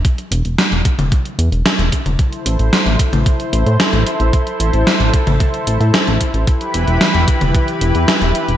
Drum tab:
HH |xxxxxxxxxxxxxxxx|xxxxxxxxxxxxxxxx|xxxxxxxxxxxxxxxx|xxxxxxxxxxxxxxxx|
SD |----o-------o---|----o-------o---|----o-------o---|----o-------o---|
T2 |-------o-------o|-------o--------|-------o--------|-------o--------|
BD |o-----o-o-----o-|o-----o-o-------|o-----o-o-----o-|o-----o-o-------|